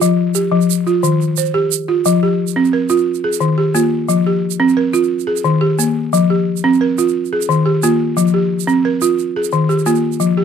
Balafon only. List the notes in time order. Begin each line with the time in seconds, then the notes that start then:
Already playing: F4
0.02 F3
0.35 G4
0.52 F3
0.87 F4
1.03 D#3
1.38 C5
1.54 G4
1.88 F4
2.06 F3
2.23 G4
2.56 C4
2.73 A#4
2.90 F4
3.24 G#4
3.40 D#3
3.58 G4
3.75 A#3 F4
4.09 F3
4.27 G4
4.60 C4
4.77 A#4
4.93 F4
5.27 G#4
5.44 D#3
5.61 G4
5.79 A#3
6.13 F3
6.30 G4
6.64 C4
6.81 A#4
6.98 F4
7.33 G#4
7.49 D#3
7.66 G4
7.83 A#3 F4
8.17 F3
8.34 G4
8.67 C4
8.85 A#4
9.02 F4
9.36 G#4
9.53 D#3
9.69 G4
9.86 A#3 F4
10.20 F3
10.37 G4